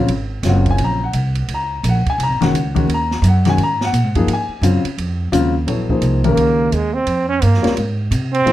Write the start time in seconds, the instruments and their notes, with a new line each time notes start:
0.08 upright bass G#1, ride
0.43 upright bass F#1, grand piano C#3 F#3 C4 F4, snare, hi-hat pedal, ride
0.48 grand piano F#5
0.66 kick, ride
0.71 grand piano G#5
0.78 upright bass A#1, ride
0.84 grand piano A#5
1.04 grand piano F#5
1.13 upright bass C2, hi-hat pedal, ride
1.35 ride
1.48 upright bass C#2, ride
1.54 grand piano A#5
1.83 upright bass A#1, hi-hat pedal, ride
1.89 grand piano F#5
2.06 grand piano G#5, muted upright bass stroke, kick, ride
2.18 upright bass C2, ride
2.23 grand piano A#5
2.29 upright bass G#1
2.41 upright bass F#1, grand piano D#3 G#3 C#4 F#4 F#5, snare, ride
2.52 upright bass C#2, hi-hat pedal, ride
2.75 grand piano D#3 G#3 C#4 F#4, kick, ride
2.87 upright bass D#2, ride
2.94 grand piano A#5
3.11 snare
3.22 upright bass F#2, hi-hat pedal, ride
3.28 grand piano F#5
3.45 grand piano D#3 G#3 C#4 F#4, snare, ride
3.49 grand piano G#5
3.58 upright bass G#2, ride
3.63 grand piano A#5
3.81 grand piano F#5, snare
3.92 upright bass A#2, hi-hat pedal, ride
4.04 upright bass G#2
4.15 upright bass F#2, grand piano F3 A#3 D#4 G#4, kick, ride
4.27 upright bass G#2, ride
4.33 grand piano G#5
4.48 muted upright bass stroke
4.61 upright bass F#2, grand piano C#3 F#3 C4 F4, hi-hat pedal, ride
4.84 muted upright bass stroke, ride
4.98 upright bass F2, ride
5.32 upright bass D#2, grand piano C#3 F#3 C4 F4, hi-hat pedal, ride
5.67 upright bass A#1, grand piano F#3 B3 E4 A4 C#5, ride
5.90 grand piano F3 A#3 D#4 G#4 C5, kick
6.02 upright bass C2, hi-hat pedal, ride
6.24 grand piano D#3 G#3 C#4 G4 A#4, trombone A#3, ride
6.36 upright bass C#2, ride
6.72 upright bass D#2, trombone G#3, hi-hat pedal, ride
6.94 trombone C4
7.06 upright bass F2, ride
7.29 trombone C#4
7.42 upright bass G2, trombone A#3, hi-hat pedal, ride
7.53 upright bass F2, snare
7.62 upright bass C#2, grand piano G3 C4 F4 A#4 C#5, snare, ride
7.77 upright bass G#2, ride
8.11 upright bass C3, hi-hat pedal, ride
8.33 trombone C4, ride
8.46 upright bass A#2, grand piano F3 A#3 D#4 G#4 C5, ride